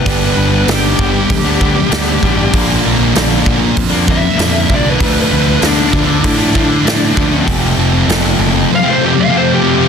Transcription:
Already playing: B4
0.06 G1 G2 D3 G3 B3 D4, kick, open hi-hat
0.25 B4
0.36 G1 D3 G3 B3 D4
0.52 G3 B3 D4
0.67 G1 G2 D3 G3 B3 D4, snare, open hi-hat
0.74 G4
0.98 G1 D3 G3 B3 D4, kick
1.14 muted distorted electric guitar stroke
1.30 D2, kick, open hi-hat
1.45 G3 B3 D4
1.58 D3 G3 B3 D4, kick
1.73 G3 B3 D4, muted distorted electric guitar stroke
1.89 D2 G2 D3 G3 B3 D4, snare, open hi-hat
2.21 A1 D3 G3 B3 D4, kick
2.37 G3 B3 D4
2.53 A#1 A#2 D3 F3 A#3 D4, kick, open hi-hat
2.83 A#1 D3 F3 A#3 D4
2.98 F3 A#3 D4
3.13 A#1 A#2 D3 F3 A#3 D4, snare, open hi-hat
3.45 A#1 D3 F3 A#3 D4, kick
3.59 muted distorted electric guitar stroke
3.77 F2, kick, open hi-hat
3.92 F3 A#3 D4
4.07 D3 F3 A#3 D4 E5, kick
4.20 A#3 D4, muted distorted electric guitar stroke
4.25 F3
4.37 F2 A#2 D3 F3 A#3 D4, snare, open hi-hat
4.69 C2 D3 F3 A#3 D4, kick
4.74 D5
4.86 F3 A#3 D4
4.90 B4
5.00 D2 D3 F3 A3 D4, kick, open hi-hat
5.20 B4
5.32 D2 D3 F3 A3 D4
5.47 F3 A3 D4
5.62 D2 D3 F3 A3 D4, snare, open hi-hat
5.93 D2 D3 F3 A3 D4, kick
6.06 muted distorted electric guitar stroke
6.24 A2, kick, open hi-hat
6.40 F3 A3 D4
6.55 D3 F3 A3 D4, kick
6.68 F3 A3 D4, muted distorted electric guitar stroke
6.85 A2 D3 F3 A3 D4, snare, open hi-hat
7.14 D2 D3 F3, kick
7.18 F3 A3 D4
7.32 F3 A3 D4
7.47 F1 F2 C3 F3 A3 C4, kick, open hi-hat
7.77 F1 C3 F3 A3 C4
7.92 F3 A3 C4
8.07 F1 F2 C3 F3 A3 C4, snare, open hi-hat
8.36 F#1 C3 F3 A3 C4
8.54 muted distorted electric guitar stroke
8.75 F5
8.83 F3 A3 C4
8.90 C5
8.99 C3 F3 A3 C4
9.05 G4
9.14 A3 C4, muted distorted electric guitar stroke
9.18 F3 F5
9.30 F2 C3 F3 A3 C4
9.37 C5
9.54 G4
9.61 C3 F3 A3 C4
9.69 G4
9.77 F3 A3 C4

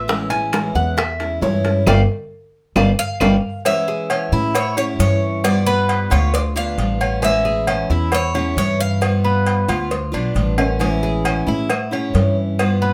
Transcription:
Already playing: A1 E5
0.08 E3 G#3 C#4 E4, high bongo
0.30 G#3 C#4 E4 G#5, high timbale
0.53 E3 G#3 C#4 E4, high bongo, high timbale, claves
0.75 E2 F#5, high bongo
0.97 E5, muted steel-string acoustic guitar stroke, high bongo, high timbale, claves
1.20 G#3 C#4 E4, high bongo, high timbale
1.41 G2 E3 G#3 C#4 E4 C#5, high bongo, low bongo, low timbale
1.64 G#3 C#4 E4, high bongo, high timbale
1.86 G1 G3 B3 D4 D5 F5 G5, low bongo, high timbale, claves
2.76 G1 G3 B3 D4 D5 F5 G5, low bongo, high timbale, claves
2.99 F5
3.20 G1 G3 B3 D4 D5 F5 G5, low bongo, high timbale, claves
3.65 E3 G#3 C#4 E4 E5, cowbell, low agogo
3.88 G#4
4.10 C#4, cowbell, low agogo
4.32 A2 G#3 C#4 E4
4.55 C#5, muted steel-string acoustic guitar stroke, cowbell, low agogo
4.77 G#3 C#4 E4 C#5, low agogo
4.99 G2 E3 C#4 E4 C#5, cowbell, low timbale
5.44 G3 B3 F4 D5, cowbell, low agogo
5.66 B3 B4
5.89 cowbell, low agogo
6.10 D2 B3 F4 C#5, cowbell, low agogo
6.34 D5, muted steel-string acoustic guitar stroke, cowbell
6.56 B3 D4 F4 F5, low agogo
6.78 A1 G3 B3 F4, cowbell
7.01 C#4, low agogo
7.22 E3 G#3 C#4 E4 E5, cowbell, low agogo
7.45 G#4
7.67 C#4, cowbell, low agogo
7.90 E2 G#3 C#4 E4
8.12 C#5, muted steel-string acoustic guitar stroke, cowbell, low agogo
8.34 G#3 C#4 E4 C#5, low agogo
8.57 G2 E3 C#4 E4 C#5, cowbell
8.80 F5
9.01 G3 B3 F4, cowbell, low agogo
9.24 B3
9.46 cowbell, low agogo
9.68 D2 B3 F4, cowbell, low agogo
9.91 muted steel-string acoustic guitar stroke, cowbell
10.12 B1 B3 D4 F4, low agogo
10.34 A1 G3 B3 F4, cowbell
10.58 C#4, high timbale, low agogo
10.79 E3 G#3 C#4 E4, cowbell, low agogo
11.03 G#4
11.25 C#4, cowbell, low agogo, claves
11.47 A2 G#3 C#4 E4
11.70 muted steel-string acoustic guitar stroke, cowbell, low agogo, claves
11.91 G#3 C#4 E4 C#5, low agogo
12.14 G2 E3 C#4 E4, cowbell, low timbale
12.59 G3 B3 F4, cowbell, low agogo, claves
12.82 B3

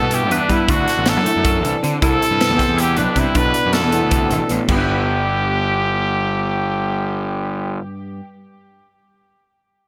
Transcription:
Already playing: G2 B3 E4 G4 A4
0.02 B2
0.11 E4 G4, closed hi-hat
0.30 E2 D4 B4, closed hi-hat
0.49 G2 G3 B3 E4, kick, closed hi-hat
0.69 D2 D3 D4 F#4, kick, closed hi-hat
0.88 snare, closed hi-hat
0.97 A1
1.06 A3 A4, snare, closed hi-hat
1.17 F#2
1.25 A3 E4, closed hi-hat
1.36 F#2
1.44 F#3, kick, closed hi-hat
1.63 C2 E3 D4, closed hi-hat
1.83 D3 C4, closed hi-hat
2.02 C2 C3 E4 A4, kick, closed hi-hat
2.22 closed hi-hat
2.30 G2
2.40 B3, snare, closed hi-hat
2.50 E2
2.58 C4, kick, snare, closed hi-hat
2.68 E2
2.78 E4 G4, closed hi-hat
2.97 B1 D4 B4, closed hi-hat
3.16 G2 C3 C4 E4, kick, closed hi-hat
3.35 B1 B2 D4 B4, kick, closed hi-hat
3.54 closed hi-hat
3.66 F#2
3.73 A3 A4, snare, closed hi-hat
3.83 E2
3.92 B3 E4, closed hi-hat
4.03 D2
4.11 C3, kick, closed hi-hat
4.30 A1 B2 D4, closed hi-hat
4.49 A1 A2 B3, closed hi-hat
4.68 G1 G2 G3 B3 G4, kick, crash
4.74 D4 E4 G4
4.78 G4 B4

